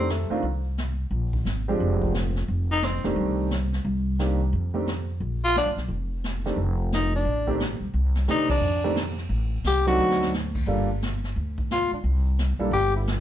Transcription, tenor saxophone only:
0, 0, Header, 1, 2, 480
1, 0, Start_track
1, 0, Tempo, 341491
1, 1574, Time_signature, 4, 2, 24, 8
1, 18555, End_track
2, 0, Start_track
2, 0, Title_t, "Tenor saxophone"
2, 0, Program_c, 0, 66
2, 0, Note_on_c, 0, 60, 75
2, 160, Note_on_c, 0, 57, 58
2, 181, Note_off_c, 0, 60, 0
2, 448, Note_off_c, 0, 57, 0
2, 3823, Note_on_c, 0, 63, 95
2, 3997, Note_on_c, 0, 60, 66
2, 4018, Note_off_c, 0, 63, 0
2, 4287, Note_off_c, 0, 60, 0
2, 7654, Note_on_c, 0, 65, 99
2, 7811, Note_off_c, 0, 65, 0
2, 7842, Note_on_c, 0, 62, 76
2, 8014, Note_off_c, 0, 62, 0
2, 9756, Note_on_c, 0, 63, 73
2, 10024, Note_off_c, 0, 63, 0
2, 10058, Note_on_c, 0, 62, 73
2, 10658, Note_off_c, 0, 62, 0
2, 11674, Note_on_c, 0, 63, 90
2, 11943, Note_off_c, 0, 63, 0
2, 11958, Note_on_c, 0, 62, 78
2, 12567, Note_off_c, 0, 62, 0
2, 13596, Note_on_c, 0, 67, 92
2, 13864, Note_off_c, 0, 67, 0
2, 13882, Note_on_c, 0, 66, 80
2, 14490, Note_off_c, 0, 66, 0
2, 16477, Note_on_c, 0, 65, 75
2, 16746, Note_off_c, 0, 65, 0
2, 16777, Note_on_c, 0, 62, 47
2, 16860, Note_off_c, 0, 62, 0
2, 17899, Note_on_c, 0, 67, 95
2, 18177, Note_off_c, 0, 67, 0
2, 18222, Note_on_c, 0, 64, 50
2, 18305, Note_off_c, 0, 64, 0
2, 18555, End_track
0, 0, End_of_file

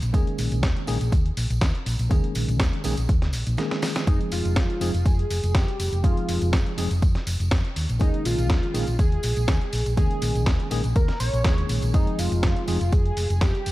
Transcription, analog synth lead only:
0, 0, Header, 1, 2, 480
1, 0, Start_track
1, 0, Tempo, 491803
1, 137, Time_signature, 4, 2, 24, 8
1, 13390, End_track
2, 0, Start_track
2, 0, Title_t, "Analog synth lead"
2, 0, Program_c, 0, 81
2, 3985, Note_on_c, 0, 63, 92
2, 4091, Note_off_c, 0, 63, 0
2, 4218, Note_on_c, 0, 65, 103
2, 4937, Note_on_c, 0, 68, 113
2, 4952, Note_off_c, 0, 65, 0
2, 5413, Note_on_c, 0, 67, 102
2, 5428, Note_off_c, 0, 68, 0
2, 5886, Note_off_c, 0, 67, 0
2, 5892, Note_on_c, 0, 65, 86
2, 6340, Note_off_c, 0, 65, 0
2, 7823, Note_on_c, 0, 63, 92
2, 8043, Note_off_c, 0, 63, 0
2, 8061, Note_on_c, 0, 65, 103
2, 8740, Note_off_c, 0, 65, 0
2, 8781, Note_on_c, 0, 68, 113
2, 9700, Note_off_c, 0, 68, 0
2, 9733, Note_on_c, 0, 68, 97
2, 10415, Note_off_c, 0, 68, 0
2, 10697, Note_on_c, 0, 70, 90
2, 10920, Note_off_c, 0, 70, 0
2, 10932, Note_on_c, 0, 73, 117
2, 11380, Note_off_c, 0, 73, 0
2, 11654, Note_on_c, 0, 63, 89
2, 11897, Note_on_c, 0, 65, 100
2, 11912, Note_off_c, 0, 63, 0
2, 12615, Note_on_c, 0, 68, 110
2, 12630, Note_off_c, 0, 65, 0
2, 13091, Note_off_c, 0, 68, 0
2, 13097, Note_on_c, 0, 67, 102
2, 13390, Note_off_c, 0, 67, 0
2, 13390, End_track
0, 0, End_of_file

